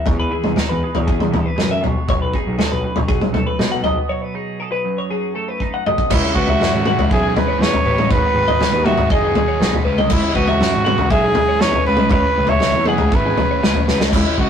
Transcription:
Already playing: G#3 G#4
0.05 E2 C#5, kick, floor tom
0.20 B4
0.31 E3 G#4
0.44 E2, mid tom
0.56 D#4 A4, snare, floor tom
0.69 E2 B4
0.84 G#4
0.95 E2 C#5, floor tom
1.07 B2 G#4, kick
1.20 E2, mid tom
1.31 E3 A4, floor tom, mid tom
1.46 B4
1.56 F#2 G#3, snare, mid tom
1.71 E5
1.81 B1 B2 C#5, floor tom
2.08 B1 F#3 C#5, kick, floor tom
2.22 B4
2.34 D#4 G#4, kick
2.47 B1
2.58 G#4 A4, snare, floor tom
2.72 B1 B4
2.83 F#2
2.96 B1 C#5, floor tom
3.08 F#3 G#4, kick
3.21 B1, mid tom
3.33 A3 A4, floor tom, mid tom
3.47 B4
3.59 B2 D#4, snare, mid tom
3.72 F#5
3.82 B1 B2 D#5, floor tom
4.09 F#3 C#5
4.22 B4
4.34 D#4 G#4
4.60 G#4 A4
4.72 B4
4.85 F#2
4.98 C#5
5.10 F#3 G#4
5.35 A3 A4
5.48 B4
5.60 D#4, kick
5.74 F#5
5.86 B2 D#5, mid tom
5.98 kick
6.10 C#2 C#3 G#3 B3 C#4 E4 C#5, kick, floor tom, crash
6.23 C#4
6.35 C#2 B3 F#4 B4, kick
6.47 E5, floor tom
6.60 F#2 C#3 E3 G#3 C#4 E4, snare, mid tom
6.73 G#1 C#5
6.86 G#3 C#4 E4 F#5, mid tom
6.98 C#2, floor tom
7.09 B1 C#3 G#3 C#4 E4 G#4 E5, kick
7.14 B3
7.23 G#4
7.37 G#2 B3 B4, floor tom, mid tom
7.48 C#4 C#5
7.59 E2 C#3 G#3 C#4 E4 B4 C#5, snare
7.63 B3
7.74 floor tom
7.85 A1 G#3 C#4 E4 B4
7.98 D#5, mid tom
8.09 G#1 G#2 D#3 G#3 B3 D#4 B4 C#5, kick, floor tom
8.13 F#4
8.34 G#1 D#4 B4
8.48 D#5, floor tom
8.59 C#2 D#3 G#3 B3 D#4 F#4, snare, mid tom
8.72 D#2 B4
8.84 G#3 B3 D#4 F#4 E5, mid tom
8.98 G#1, floor tom
9.10 F#1 D#3 G#3 B3 D#4 G#4 D#5, kick
9.24 G#4
9.35 G#2 F#4, floor tom, mid tom
9.48 C#5
9.60 B1 G#2 D#3 G#3 B3 D#4 B4, snare
9.73 floor tom
9.84 C#2 C#3 G#3 C#4 E4 B4
9.98 D#5, mid tom
10.10 C#2 C#3 G#3 B3 C#4 E4 C#5, kick, floor tom, crash
10.35 C#2 E3 C#4 F#4 B4, kick
10.47 E5, floor tom
10.61 F#2 C#3 G#3 C#4 E4, snare, mid tom
10.73 G#1 C#5
10.85 G#3 B3 C#4 E4 F#5, mid tom
10.98 C#2, floor tom
11.10 B1 G#2 C#3 G#3 C#4 E4 G#4 E5, kick
11.24 G#4
11.35 B3, floor tom, mid tom
11.49 C#5
11.60 E2 C#3 G#3 C#4 E4 B4 C#5, snare
11.73 floor tom
11.85 C#2 C#3 G#3 C#4 E4 B4
11.97 D#5, mid tom
12.10 C#2 C#3 E3 A3 C#4 E4 B4 C#5, kick, floor tom
12.14 G#3 B3 G#4
12.37 C#2 B4
12.47 C#5 E5, floor tom
12.60 C#2 C#3 E3 A3 B3 C#4 E4, snare, mid tom
12.75 E2 C#5
12.85 A3 B3 C#4 E4 G#4 F#5, mid tom
12.98 C#2, floor tom
13.12 G#1 C#3 A3 C#4 E4 B4 E5, kick
13.26 G#4
13.37 C#3 B3, floor tom, mid tom
13.51 C#5
13.62 C#2 C#3 A3 C#4 E4 B4, snare
13.75 floor tom
13.88 C#2 A3 B3 C#4 E4 B4, snare
14.00 D#5, snare
14.13 C#2 C#3 E3 G#3 B3 C#4 E4 C#5, kick, floor tom, splash, crash
14.38 C#2 B3 F#4 B4, kick

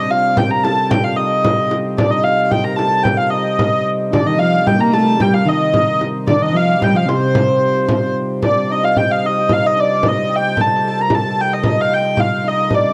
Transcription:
Already playing: C3 G3 C4 D4 G4 D#5
0.10 F4 F5, frame drum
0.36 G4 G5, frame drum
0.49 A#4 A#5
0.63 A4 A5, frame drum
0.90 G4 G5, frame drum
1.03 F4 F5
1.16 D#4 D#5, frame drum
1.44 frame drum
1.71 frame drum
1.98 D4 D5, frame drum
2.09 D#4 D#5
2.23 F4 F5, frame drum
2.50 G4 G5, frame drum
2.64 A#4 A#5
2.76 A4 A5, frame drum
3.03 G4 G5, frame drum
3.17 F4 F5
3.30 D#4 D#5, frame drum
3.59 D#4, frame drum
4.11 C3 D3 G3 D4 D#4 D5, frame drum
4.25 D#3 D#4 D#5
4.38 F3 F4 F5, frame drum
4.64 G3 G4 G5, frame drum
4.78 A#3 A#5
4.83 A#4
4.91 A3 A5, frame drum
5.01 A#4
5.19 G3 G4 G5, frame drum
5.34 F4 F5
5.45 D#3 D#4 D#5, frame drum
5.74 frame drum
6.01 frame drum
6.27 D3 D4 D5, frame drum
6.41 D#3 D#4 D#5
6.53 F3 F4 F5, frame drum
6.80 G3 G4 G5, frame drum
6.94 F3 F4 F5
7.06 C3 C4 C5, frame drum
7.35 frame drum
7.89 frame drum
8.42 C3 G3 D4 D5, frame drum
8.69 D#4 D#5
8.82 F4 F5
8.96 G4 G5, frame drum
9.10 F4 F5
9.23 D#4 D#5, frame drum
9.49 F4 F5, frame drum
9.63 D#4 D#5
9.76 D4 D5
10.03 D#4, frame drum
10.08 D#5
10.29 G4, frame drum
10.36 G5
10.56 A4, frame drum
10.61 A5
10.84 A4 A5
10.98 A#4 A#5
11.10 A4, frame drum
11.15 A4 A5
11.24 A4
11.38 G4 G5, frame drum
11.53 D#5
11.63 D#4, frame drum
11.68 D#5
11.76 F4
11.81 F5
11.89 G4
11.94 G5
12.15 F4, frame drum
12.20 F5
12.44 D#4 D#5
12.51 D#4
12.57 D#4
12.71 C3 G3 D4 D5, frame drum

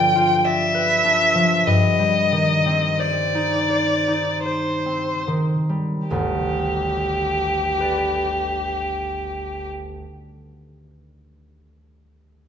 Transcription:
Already playing: G2 D3 F3 D4 F4 B4 D5 G5
0.15 F4
0.44 D5 E5
0.74 B4
1.04 D4
1.35 F3
1.67 G2 D#5
1.99 G3
2.32 D#3
2.66 C4
2.99 C5 D5
3.35 D#4
3.70 C5
4.08 D#4
4.45 C5
4.86 C4
5.27 D#3
5.69 G3
6.08 G1 D2 G4
7.78 G4 B4
7.82 D5

